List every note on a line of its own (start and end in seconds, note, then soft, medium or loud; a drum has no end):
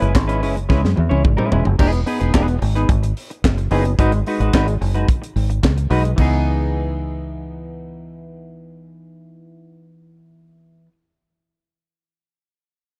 0.01 0.16 F#1 loud
0.01 0.13 G#3 medium
0.01 0.13 C#4 medium
0.01 0.14 E4 medium
0.01 0.14 B4 medium
0.01 closed hi-hat soft
0.15 0.43 G#1 loud
0.15 kick loud
0.15 snare loud
0.15 clap medium
0.15 closed hi-hat medium
0.28 0.41 G#3 medium
0.28 0.41 C#4 medium
0.28 0.41 E4 medium
0.28 0.42 B4 medium
0.28 closed hi-hat soft
0.42 0.66 F#1 loud
0.42 0.58 G#3 medium
0.42 0.56 C#4 medium
0.42 0.55 E4 medium
0.42 0.55 B4 medium
0.42 open hi-hat medium
0.56 muted clean electric guitar stroke medium
0.56 closed hi-hat soft
0.69 0.81 C#2 loud
0.69 0.89 G#3 medium
0.69 0.82 C#4 medium
0.69 0.81 E4 medium
0.69 0.81 B4 medium
0.69 kick loud
0.69 snare medium
0.83 0.96 F#2 medium
0.83 muted clean electric guitar stroke soft
0.83 snare medium
0.96 1.09 E2 loud
0.96 muted clean electric guitar stroke soft
0.96 high tom medium
1.09 1.23 C#2 loud
1.09 1.23 G#3 medium
1.09 1.23 C#4 medium
1.09 1.23 E4 medium
1.09 1.24 C#5 medium
1.09 high tom medium
1.25 1.36 G#1 medium
1.25 kick loud
1.25 mid tom medium
1.37 1.50 G#3 medium
1.37 1.50 C#4 medium
1.37 1.51 E4 medium
1.37 1.51 B4 medium
1.37 mid tom medium
1.51 1.64 E1 loud
1.51 1.67 G#3 medium
1.51 1.64 C#4 medium
1.51 1.64 E4 medium
1.51 1.64 B4 medium
1.51 floor tom loud
1.65 1.78 F#1 loud
1.65 muted clean electric guitar stroke soft
1.65 floor tom medium
1.79 2.02 E1 loud
1.79 1.99 B3 medium
1.79 1.92 D#4 medium
1.79 1.92 G#4 loud
1.79 1.91 B4 medium
1.79 kick loud
1.79 crash loud
1.92 muted clean electric guitar stroke soft
1.92 closed hi-hat soft
2.06 2.20 B3 medium
2.06 2.19 D#4 medium
2.06 2.19 G#4 medium
2.06 2.19 B4 medium
2.06 open hi-hat medium
2.20 2.32 E1 medium
2.20 2.33 B3 soft
2.20 2.33 D#4 soft
2.20 2.33 G#4 medium
2.20 2.33 B4 medium
2.20 closed hi-hat soft
2.34 2.57 E1 loud
2.34 2.54 B3 medium
2.34 2.48 D#4 loud
2.34 2.47 G#4 medium
2.34 2.47 B4 loud
2.34 kick loud
2.34 snare loud
2.34 clap medium
2.34 closed hi-hat medium
2.48 muted clean electric guitar stroke medium
2.48 closed hi-hat soft
2.61 2.85 G#1 loud
2.61 muted clean electric guitar stroke soft
2.61 open hi-hat medium
2.75 2.88 B3 medium
2.75 2.89 D#4 medium
2.75 2.89 G#4 medium
2.75 2.89 B4 medium
2.75 closed hi-hat soft
2.89 3.12 G#1 loud
2.89 muted clean electric guitar stroke soft
2.89 kick loud
2.89 closed hi-hat medium
3.03 muted clean electric guitar stroke soft
3.03 closed hi-hat medium
3.17 open hi-hat medium
3.30 muted clean electric guitar stroke soft
3.30 closed hi-hat soft
3.44 3.67 F#1 loud
3.44 muted clean electric guitar stroke medium
3.44 kick loud
3.44 snare loud
3.44 clap medium
3.44 closed hi-hat medium
3.58 muted clean electric guitar stroke soft
3.58 closed hi-hat soft
3.71 3.94 F#1 loud
3.71 3.91 B3 medium
3.71 3.84 D#4 medium
3.71 3.84 G#4 medium
3.71 3.84 B4 medium
3.71 open hi-hat medium
3.85 muted clean electric guitar stroke medium
3.85 closed hi-hat medium
3.99 4.22 G#1 loud
3.99 4.19 G#3 medium
3.99 4.13 D#4 medium
3.99 4.12 F#4 medium
3.99 4.12 B4 loud
3.99 kick loud
3.99 closed hi-hat medium
4.12 muted clean electric guitar stroke soft
4.12 closed hi-hat soft
4.26 4.40 G#3 medium
4.26 4.40 D#4 medium
4.26 4.40 F#4 medium
4.26 4.39 B4 medium
4.26 open hi-hat medium
4.40 4.51 G#1 medium
4.40 4.52 G#3 medium
4.40 4.53 D#4 soft
4.40 4.53 F#4 medium
4.40 4.53 B4 medium
4.40 closed hi-hat soft
4.54 4.77 G#1 loud
4.54 4.73 G#3 medium
4.54 4.68 D#4 loud
4.54 4.67 F#4 loud
4.54 4.67 B4 loud
4.54 kick loud
4.54 snare loud
4.54 clap medium
4.54 closed hi-hat medium
4.68 muted clean electric guitar stroke soft
4.68 closed hi-hat soft
4.81 5.04 F#1 medium
4.81 muted clean electric guitar stroke soft
4.81 open hi-hat medium
4.95 5.07 G#3 soft
4.95 5.07 D#4 medium
4.95 5.08 F#4 medium
4.95 5.08 B4 medium
4.95 closed hi-hat soft
5.08 muted clean electric guitar stroke soft
5.08 kick loud
5.08 closed hi-hat medium
5.22 muted clean electric guitar stroke medium
5.22 closed hi-hat medium
5.36 5.58 G#1 medium
5.36 open hi-hat medium
5.50 muted clean electric guitar stroke soft
5.50 closed hi-hat soft
5.63 5.86 C#2 medium
5.63 muted clean electric guitar stroke soft
5.63 kick loud
5.63 snare loud
5.63 clap medium
5.63 closed hi-hat medium
5.77 muted clean electric guitar stroke soft
5.77 closed hi-hat soft
5.90 6.13 B1 loud
5.90 6.10 G#3 medium
5.90 6.04 D#4 medium
5.90 6.04 F#4 medium
5.90 6.03 B4 medium
5.90 open hi-hat medium
6.04 muted clean electric guitar stroke soft
6.04 closed hi-hat medium
6.16 10.85 C#2 medium
6.16 10.87 E3 medium
6.16 10.89 B3 medium
6.16 10.91 D#4 medium
6.16 kick medium
6.16 crash medium
6.21 10.92 G#4 medium